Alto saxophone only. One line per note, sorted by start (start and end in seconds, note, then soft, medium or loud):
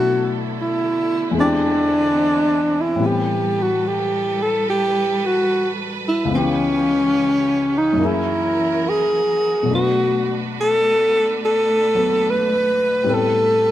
0.00 0.35 F#4 medium
0.61 1.35 E4 medium
1.41 2.82 D4 medium
2.81 3.07 E4 medium
3.06 3.63 G4 medium
3.62 3.89 F#4 medium
3.87 4.44 G4 medium
4.43 4.67 A4 medium
4.70 5.27 G4 medium
5.26 5.70 F#4 medium
6.08 6.32 E4 medium
6.35 7.79 C#4 medium
7.78 8.07 D#4 medium
8.06 8.91 E4 medium
8.89 9.71 G#4 medium
9.75 10.35 F#4 medium
10.61 11.38 A4 medium
11.45 12.32 A4 medium
12.30 13.16 B4 medium
13.14 13.71 A4 medium